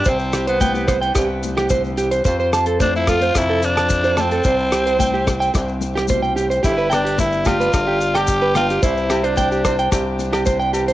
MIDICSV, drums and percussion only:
0, 0, Header, 1, 2, 480
1, 0, Start_track
1, 0, Tempo, 547445
1, 58, Time_signature, 4, 2, 24, 8
1, 9584, End_track
2, 0, Start_track
2, 0, Title_t, "Drums"
2, 40, Note_on_c, 9, 70, 97
2, 51, Note_on_c, 9, 42, 45
2, 53, Note_on_c, 9, 36, 84
2, 57, Note_on_c, 9, 62, 28
2, 128, Note_off_c, 9, 70, 0
2, 138, Note_off_c, 9, 42, 0
2, 140, Note_off_c, 9, 36, 0
2, 144, Note_off_c, 9, 62, 0
2, 168, Note_on_c, 9, 70, 24
2, 255, Note_off_c, 9, 70, 0
2, 287, Note_on_c, 9, 70, 77
2, 292, Note_on_c, 9, 37, 64
2, 292, Note_on_c, 9, 42, 42
2, 295, Note_on_c, 9, 62, 25
2, 375, Note_off_c, 9, 70, 0
2, 379, Note_off_c, 9, 37, 0
2, 379, Note_off_c, 9, 42, 0
2, 383, Note_off_c, 9, 62, 0
2, 416, Note_on_c, 9, 42, 42
2, 504, Note_off_c, 9, 42, 0
2, 532, Note_on_c, 9, 42, 41
2, 534, Note_on_c, 9, 36, 69
2, 534, Note_on_c, 9, 70, 81
2, 539, Note_on_c, 9, 63, 83
2, 619, Note_off_c, 9, 42, 0
2, 622, Note_off_c, 9, 36, 0
2, 622, Note_off_c, 9, 70, 0
2, 626, Note_off_c, 9, 63, 0
2, 657, Note_on_c, 9, 70, 28
2, 745, Note_off_c, 9, 70, 0
2, 773, Note_on_c, 9, 36, 68
2, 773, Note_on_c, 9, 70, 63
2, 774, Note_on_c, 9, 37, 68
2, 774, Note_on_c, 9, 42, 46
2, 861, Note_off_c, 9, 36, 0
2, 861, Note_off_c, 9, 70, 0
2, 862, Note_off_c, 9, 37, 0
2, 862, Note_off_c, 9, 42, 0
2, 900, Note_on_c, 9, 42, 38
2, 901, Note_on_c, 9, 70, 26
2, 988, Note_off_c, 9, 42, 0
2, 989, Note_off_c, 9, 70, 0
2, 1009, Note_on_c, 9, 70, 86
2, 1011, Note_on_c, 9, 37, 65
2, 1011, Note_on_c, 9, 42, 47
2, 1014, Note_on_c, 9, 36, 80
2, 1022, Note_on_c, 9, 62, 26
2, 1097, Note_off_c, 9, 70, 0
2, 1099, Note_off_c, 9, 37, 0
2, 1099, Note_off_c, 9, 42, 0
2, 1102, Note_off_c, 9, 36, 0
2, 1110, Note_off_c, 9, 62, 0
2, 1254, Note_on_c, 9, 42, 46
2, 1257, Note_on_c, 9, 70, 71
2, 1266, Note_on_c, 9, 63, 65
2, 1342, Note_off_c, 9, 42, 0
2, 1344, Note_off_c, 9, 70, 0
2, 1354, Note_off_c, 9, 63, 0
2, 1379, Note_on_c, 9, 70, 25
2, 1382, Note_on_c, 9, 37, 72
2, 1382, Note_on_c, 9, 42, 48
2, 1467, Note_off_c, 9, 70, 0
2, 1470, Note_off_c, 9, 37, 0
2, 1470, Note_off_c, 9, 42, 0
2, 1485, Note_on_c, 9, 70, 89
2, 1488, Note_on_c, 9, 42, 43
2, 1495, Note_on_c, 9, 36, 65
2, 1509, Note_on_c, 9, 63, 69
2, 1573, Note_off_c, 9, 70, 0
2, 1575, Note_off_c, 9, 42, 0
2, 1583, Note_off_c, 9, 36, 0
2, 1597, Note_off_c, 9, 63, 0
2, 1616, Note_on_c, 9, 70, 25
2, 1704, Note_off_c, 9, 70, 0
2, 1731, Note_on_c, 9, 42, 47
2, 1736, Note_on_c, 9, 70, 68
2, 1745, Note_on_c, 9, 62, 28
2, 1818, Note_off_c, 9, 42, 0
2, 1824, Note_off_c, 9, 70, 0
2, 1832, Note_off_c, 9, 62, 0
2, 1855, Note_on_c, 9, 42, 48
2, 1871, Note_on_c, 9, 70, 23
2, 1942, Note_off_c, 9, 42, 0
2, 1959, Note_off_c, 9, 70, 0
2, 1965, Note_on_c, 9, 42, 46
2, 1975, Note_on_c, 9, 36, 73
2, 1979, Note_on_c, 9, 70, 91
2, 1988, Note_on_c, 9, 62, 27
2, 2053, Note_off_c, 9, 42, 0
2, 2062, Note_off_c, 9, 36, 0
2, 2066, Note_off_c, 9, 70, 0
2, 2075, Note_off_c, 9, 62, 0
2, 2102, Note_on_c, 9, 70, 24
2, 2190, Note_off_c, 9, 70, 0
2, 2219, Note_on_c, 9, 37, 62
2, 2219, Note_on_c, 9, 42, 44
2, 2221, Note_on_c, 9, 70, 76
2, 2230, Note_on_c, 9, 62, 25
2, 2307, Note_off_c, 9, 37, 0
2, 2307, Note_off_c, 9, 42, 0
2, 2309, Note_off_c, 9, 70, 0
2, 2318, Note_off_c, 9, 62, 0
2, 2333, Note_on_c, 9, 42, 49
2, 2420, Note_off_c, 9, 42, 0
2, 2456, Note_on_c, 9, 42, 48
2, 2458, Note_on_c, 9, 36, 63
2, 2459, Note_on_c, 9, 70, 83
2, 2471, Note_on_c, 9, 63, 86
2, 2543, Note_off_c, 9, 42, 0
2, 2545, Note_off_c, 9, 36, 0
2, 2547, Note_off_c, 9, 70, 0
2, 2559, Note_off_c, 9, 63, 0
2, 2593, Note_on_c, 9, 70, 28
2, 2681, Note_off_c, 9, 70, 0
2, 2695, Note_on_c, 9, 37, 71
2, 2695, Note_on_c, 9, 42, 57
2, 2698, Note_on_c, 9, 36, 63
2, 2701, Note_on_c, 9, 70, 68
2, 2710, Note_on_c, 9, 63, 77
2, 2783, Note_off_c, 9, 37, 0
2, 2783, Note_off_c, 9, 42, 0
2, 2785, Note_off_c, 9, 36, 0
2, 2789, Note_off_c, 9, 70, 0
2, 2797, Note_off_c, 9, 63, 0
2, 2821, Note_on_c, 9, 42, 49
2, 2829, Note_on_c, 9, 70, 27
2, 2909, Note_off_c, 9, 42, 0
2, 2917, Note_off_c, 9, 70, 0
2, 2938, Note_on_c, 9, 37, 64
2, 2938, Note_on_c, 9, 42, 47
2, 2939, Note_on_c, 9, 70, 93
2, 2940, Note_on_c, 9, 36, 80
2, 2953, Note_on_c, 9, 62, 25
2, 3025, Note_off_c, 9, 37, 0
2, 3025, Note_off_c, 9, 42, 0
2, 3026, Note_off_c, 9, 70, 0
2, 3028, Note_off_c, 9, 36, 0
2, 3040, Note_off_c, 9, 62, 0
2, 3178, Note_on_c, 9, 42, 49
2, 3180, Note_on_c, 9, 70, 76
2, 3266, Note_off_c, 9, 42, 0
2, 3268, Note_off_c, 9, 70, 0
2, 3304, Note_on_c, 9, 70, 25
2, 3309, Note_on_c, 9, 37, 69
2, 3309, Note_on_c, 9, 42, 53
2, 3391, Note_off_c, 9, 70, 0
2, 3396, Note_off_c, 9, 37, 0
2, 3396, Note_off_c, 9, 42, 0
2, 3414, Note_on_c, 9, 70, 97
2, 3421, Note_on_c, 9, 36, 63
2, 3421, Note_on_c, 9, 42, 47
2, 3502, Note_off_c, 9, 70, 0
2, 3509, Note_off_c, 9, 36, 0
2, 3509, Note_off_c, 9, 42, 0
2, 3540, Note_on_c, 9, 70, 30
2, 3628, Note_off_c, 9, 70, 0
2, 3656, Note_on_c, 9, 37, 65
2, 3656, Note_on_c, 9, 42, 51
2, 3658, Note_on_c, 9, 70, 63
2, 3669, Note_on_c, 9, 62, 28
2, 3669, Note_on_c, 9, 63, 64
2, 3744, Note_off_c, 9, 37, 0
2, 3744, Note_off_c, 9, 42, 0
2, 3746, Note_off_c, 9, 70, 0
2, 3757, Note_off_c, 9, 62, 0
2, 3757, Note_off_c, 9, 63, 0
2, 3782, Note_on_c, 9, 42, 46
2, 3786, Note_on_c, 9, 70, 26
2, 3870, Note_off_c, 9, 42, 0
2, 3873, Note_off_c, 9, 70, 0
2, 3892, Note_on_c, 9, 70, 93
2, 3899, Note_on_c, 9, 42, 45
2, 3902, Note_on_c, 9, 36, 77
2, 3903, Note_on_c, 9, 62, 26
2, 3980, Note_off_c, 9, 70, 0
2, 3987, Note_off_c, 9, 42, 0
2, 3990, Note_off_c, 9, 36, 0
2, 3990, Note_off_c, 9, 62, 0
2, 4027, Note_on_c, 9, 70, 24
2, 4115, Note_off_c, 9, 70, 0
2, 4136, Note_on_c, 9, 62, 26
2, 4140, Note_on_c, 9, 37, 63
2, 4140, Note_on_c, 9, 42, 43
2, 4140, Note_on_c, 9, 70, 77
2, 4224, Note_off_c, 9, 62, 0
2, 4227, Note_off_c, 9, 70, 0
2, 4228, Note_off_c, 9, 37, 0
2, 4228, Note_off_c, 9, 42, 0
2, 4266, Note_on_c, 9, 70, 25
2, 4269, Note_on_c, 9, 42, 44
2, 4354, Note_off_c, 9, 70, 0
2, 4357, Note_off_c, 9, 42, 0
2, 4374, Note_on_c, 9, 63, 89
2, 4384, Note_on_c, 9, 36, 58
2, 4386, Note_on_c, 9, 42, 43
2, 4387, Note_on_c, 9, 70, 91
2, 4461, Note_off_c, 9, 63, 0
2, 4471, Note_off_c, 9, 36, 0
2, 4473, Note_off_c, 9, 42, 0
2, 4474, Note_off_c, 9, 70, 0
2, 4507, Note_on_c, 9, 70, 24
2, 4595, Note_off_c, 9, 70, 0
2, 4624, Note_on_c, 9, 36, 62
2, 4625, Note_on_c, 9, 70, 73
2, 4626, Note_on_c, 9, 37, 66
2, 4626, Note_on_c, 9, 42, 49
2, 4711, Note_off_c, 9, 36, 0
2, 4713, Note_off_c, 9, 70, 0
2, 4714, Note_off_c, 9, 37, 0
2, 4714, Note_off_c, 9, 42, 0
2, 4751, Note_on_c, 9, 42, 43
2, 4751, Note_on_c, 9, 70, 26
2, 4838, Note_off_c, 9, 42, 0
2, 4838, Note_off_c, 9, 70, 0
2, 4859, Note_on_c, 9, 62, 26
2, 4862, Note_on_c, 9, 70, 92
2, 4865, Note_on_c, 9, 36, 82
2, 4869, Note_on_c, 9, 37, 62
2, 4869, Note_on_c, 9, 42, 41
2, 4947, Note_off_c, 9, 62, 0
2, 4950, Note_off_c, 9, 70, 0
2, 4952, Note_off_c, 9, 36, 0
2, 4957, Note_off_c, 9, 37, 0
2, 4957, Note_off_c, 9, 42, 0
2, 4983, Note_on_c, 9, 70, 23
2, 5071, Note_off_c, 9, 70, 0
2, 5095, Note_on_c, 9, 63, 69
2, 5098, Note_on_c, 9, 70, 67
2, 5110, Note_on_c, 9, 42, 46
2, 5182, Note_off_c, 9, 63, 0
2, 5186, Note_off_c, 9, 70, 0
2, 5198, Note_off_c, 9, 42, 0
2, 5226, Note_on_c, 9, 70, 25
2, 5239, Note_on_c, 9, 37, 64
2, 5239, Note_on_c, 9, 42, 46
2, 5314, Note_off_c, 9, 70, 0
2, 5326, Note_off_c, 9, 37, 0
2, 5326, Note_off_c, 9, 42, 0
2, 5330, Note_on_c, 9, 70, 90
2, 5332, Note_on_c, 9, 63, 69
2, 5348, Note_on_c, 9, 36, 64
2, 5355, Note_on_c, 9, 42, 46
2, 5418, Note_off_c, 9, 70, 0
2, 5420, Note_off_c, 9, 63, 0
2, 5435, Note_off_c, 9, 36, 0
2, 5443, Note_off_c, 9, 42, 0
2, 5471, Note_on_c, 9, 70, 29
2, 5559, Note_off_c, 9, 70, 0
2, 5587, Note_on_c, 9, 70, 68
2, 5596, Note_on_c, 9, 42, 48
2, 5675, Note_off_c, 9, 70, 0
2, 5683, Note_off_c, 9, 42, 0
2, 5710, Note_on_c, 9, 70, 25
2, 5711, Note_on_c, 9, 42, 45
2, 5798, Note_off_c, 9, 42, 0
2, 5798, Note_off_c, 9, 70, 0
2, 5817, Note_on_c, 9, 62, 30
2, 5821, Note_on_c, 9, 70, 87
2, 5824, Note_on_c, 9, 36, 78
2, 5827, Note_on_c, 9, 42, 46
2, 5905, Note_off_c, 9, 62, 0
2, 5908, Note_off_c, 9, 70, 0
2, 5912, Note_off_c, 9, 36, 0
2, 5915, Note_off_c, 9, 42, 0
2, 5943, Note_on_c, 9, 70, 23
2, 6031, Note_off_c, 9, 70, 0
2, 6058, Note_on_c, 9, 68, 65
2, 6061, Note_on_c, 9, 70, 71
2, 6063, Note_on_c, 9, 62, 28
2, 6074, Note_on_c, 9, 37, 67
2, 6074, Note_on_c, 9, 42, 44
2, 6146, Note_off_c, 9, 68, 0
2, 6148, Note_off_c, 9, 70, 0
2, 6151, Note_off_c, 9, 62, 0
2, 6161, Note_off_c, 9, 37, 0
2, 6161, Note_off_c, 9, 42, 0
2, 6195, Note_on_c, 9, 42, 46
2, 6283, Note_off_c, 9, 42, 0
2, 6297, Note_on_c, 9, 63, 100
2, 6300, Note_on_c, 9, 70, 80
2, 6302, Note_on_c, 9, 42, 44
2, 6303, Note_on_c, 9, 36, 59
2, 6385, Note_off_c, 9, 63, 0
2, 6388, Note_off_c, 9, 70, 0
2, 6389, Note_off_c, 9, 42, 0
2, 6391, Note_off_c, 9, 36, 0
2, 6420, Note_on_c, 9, 70, 26
2, 6508, Note_off_c, 9, 70, 0
2, 6531, Note_on_c, 9, 70, 75
2, 6542, Note_on_c, 9, 68, 66
2, 6543, Note_on_c, 9, 36, 68
2, 6546, Note_on_c, 9, 63, 85
2, 6549, Note_on_c, 9, 37, 62
2, 6549, Note_on_c, 9, 42, 52
2, 6619, Note_off_c, 9, 70, 0
2, 6629, Note_off_c, 9, 68, 0
2, 6630, Note_off_c, 9, 36, 0
2, 6633, Note_off_c, 9, 63, 0
2, 6637, Note_off_c, 9, 37, 0
2, 6637, Note_off_c, 9, 42, 0
2, 6668, Note_on_c, 9, 70, 26
2, 6675, Note_on_c, 9, 42, 47
2, 6756, Note_off_c, 9, 70, 0
2, 6763, Note_off_c, 9, 42, 0
2, 6779, Note_on_c, 9, 70, 93
2, 6780, Note_on_c, 9, 68, 67
2, 6784, Note_on_c, 9, 36, 89
2, 6789, Note_on_c, 9, 37, 64
2, 6789, Note_on_c, 9, 42, 46
2, 6867, Note_off_c, 9, 68, 0
2, 6867, Note_off_c, 9, 70, 0
2, 6872, Note_off_c, 9, 36, 0
2, 6876, Note_off_c, 9, 37, 0
2, 6876, Note_off_c, 9, 42, 0
2, 7021, Note_on_c, 9, 70, 70
2, 7029, Note_on_c, 9, 42, 49
2, 7108, Note_off_c, 9, 70, 0
2, 7116, Note_off_c, 9, 42, 0
2, 7147, Note_on_c, 9, 37, 63
2, 7147, Note_on_c, 9, 42, 53
2, 7148, Note_on_c, 9, 68, 66
2, 7235, Note_off_c, 9, 37, 0
2, 7235, Note_off_c, 9, 42, 0
2, 7235, Note_off_c, 9, 68, 0
2, 7252, Note_on_c, 9, 70, 104
2, 7262, Note_on_c, 9, 36, 65
2, 7264, Note_on_c, 9, 42, 53
2, 7340, Note_off_c, 9, 70, 0
2, 7350, Note_off_c, 9, 36, 0
2, 7352, Note_off_c, 9, 42, 0
2, 7378, Note_on_c, 9, 70, 32
2, 7465, Note_off_c, 9, 70, 0
2, 7498, Note_on_c, 9, 37, 67
2, 7498, Note_on_c, 9, 42, 46
2, 7500, Note_on_c, 9, 70, 72
2, 7507, Note_on_c, 9, 62, 34
2, 7507, Note_on_c, 9, 63, 74
2, 7508, Note_on_c, 9, 68, 56
2, 7586, Note_off_c, 9, 37, 0
2, 7586, Note_off_c, 9, 42, 0
2, 7588, Note_off_c, 9, 70, 0
2, 7594, Note_off_c, 9, 62, 0
2, 7594, Note_off_c, 9, 63, 0
2, 7595, Note_off_c, 9, 68, 0
2, 7630, Note_on_c, 9, 42, 53
2, 7632, Note_on_c, 9, 70, 30
2, 7718, Note_off_c, 9, 42, 0
2, 7719, Note_off_c, 9, 70, 0
2, 7739, Note_on_c, 9, 70, 89
2, 7740, Note_on_c, 9, 42, 44
2, 7741, Note_on_c, 9, 36, 88
2, 7743, Note_on_c, 9, 62, 31
2, 7827, Note_off_c, 9, 70, 0
2, 7828, Note_off_c, 9, 42, 0
2, 7829, Note_off_c, 9, 36, 0
2, 7830, Note_off_c, 9, 62, 0
2, 7868, Note_on_c, 9, 70, 27
2, 7956, Note_off_c, 9, 70, 0
2, 7978, Note_on_c, 9, 37, 66
2, 7978, Note_on_c, 9, 42, 48
2, 7980, Note_on_c, 9, 70, 80
2, 7985, Note_on_c, 9, 68, 66
2, 7987, Note_on_c, 9, 62, 31
2, 8066, Note_off_c, 9, 37, 0
2, 8066, Note_off_c, 9, 42, 0
2, 8068, Note_off_c, 9, 70, 0
2, 8073, Note_off_c, 9, 68, 0
2, 8075, Note_off_c, 9, 62, 0
2, 8103, Note_on_c, 9, 42, 45
2, 8191, Note_off_c, 9, 42, 0
2, 8219, Note_on_c, 9, 63, 82
2, 8219, Note_on_c, 9, 70, 88
2, 8220, Note_on_c, 9, 36, 61
2, 8222, Note_on_c, 9, 42, 49
2, 8306, Note_off_c, 9, 70, 0
2, 8307, Note_off_c, 9, 63, 0
2, 8308, Note_off_c, 9, 36, 0
2, 8310, Note_off_c, 9, 42, 0
2, 8347, Note_on_c, 9, 70, 29
2, 8434, Note_off_c, 9, 70, 0
2, 8459, Note_on_c, 9, 37, 74
2, 8459, Note_on_c, 9, 42, 53
2, 8459, Note_on_c, 9, 68, 65
2, 8461, Note_on_c, 9, 36, 64
2, 8461, Note_on_c, 9, 70, 73
2, 8547, Note_off_c, 9, 37, 0
2, 8547, Note_off_c, 9, 42, 0
2, 8547, Note_off_c, 9, 68, 0
2, 8548, Note_off_c, 9, 70, 0
2, 8549, Note_off_c, 9, 36, 0
2, 8583, Note_on_c, 9, 70, 26
2, 8584, Note_on_c, 9, 42, 44
2, 8670, Note_off_c, 9, 70, 0
2, 8672, Note_off_c, 9, 42, 0
2, 8693, Note_on_c, 9, 68, 57
2, 8699, Note_on_c, 9, 36, 86
2, 8699, Note_on_c, 9, 37, 68
2, 8699, Note_on_c, 9, 42, 46
2, 8700, Note_on_c, 9, 62, 28
2, 8700, Note_on_c, 9, 70, 97
2, 8781, Note_off_c, 9, 68, 0
2, 8787, Note_off_c, 9, 36, 0
2, 8787, Note_off_c, 9, 37, 0
2, 8787, Note_off_c, 9, 42, 0
2, 8787, Note_off_c, 9, 70, 0
2, 8788, Note_off_c, 9, 62, 0
2, 8936, Note_on_c, 9, 63, 67
2, 8937, Note_on_c, 9, 70, 78
2, 8945, Note_on_c, 9, 42, 47
2, 9024, Note_off_c, 9, 63, 0
2, 9024, Note_off_c, 9, 70, 0
2, 9032, Note_off_c, 9, 42, 0
2, 9056, Note_on_c, 9, 68, 61
2, 9060, Note_on_c, 9, 37, 65
2, 9060, Note_on_c, 9, 42, 46
2, 9068, Note_on_c, 9, 70, 28
2, 9143, Note_off_c, 9, 68, 0
2, 9147, Note_off_c, 9, 37, 0
2, 9147, Note_off_c, 9, 42, 0
2, 9156, Note_off_c, 9, 70, 0
2, 9171, Note_on_c, 9, 70, 97
2, 9179, Note_on_c, 9, 36, 63
2, 9179, Note_on_c, 9, 42, 43
2, 9179, Note_on_c, 9, 63, 70
2, 9259, Note_off_c, 9, 70, 0
2, 9267, Note_off_c, 9, 36, 0
2, 9267, Note_off_c, 9, 42, 0
2, 9267, Note_off_c, 9, 63, 0
2, 9302, Note_on_c, 9, 70, 30
2, 9390, Note_off_c, 9, 70, 0
2, 9416, Note_on_c, 9, 68, 66
2, 9418, Note_on_c, 9, 70, 74
2, 9419, Note_on_c, 9, 62, 28
2, 9422, Note_on_c, 9, 42, 49
2, 9503, Note_off_c, 9, 68, 0
2, 9505, Note_off_c, 9, 70, 0
2, 9507, Note_off_c, 9, 62, 0
2, 9510, Note_off_c, 9, 42, 0
2, 9543, Note_on_c, 9, 42, 43
2, 9549, Note_on_c, 9, 70, 30
2, 9584, Note_off_c, 9, 42, 0
2, 9584, Note_off_c, 9, 70, 0
2, 9584, End_track
0, 0, End_of_file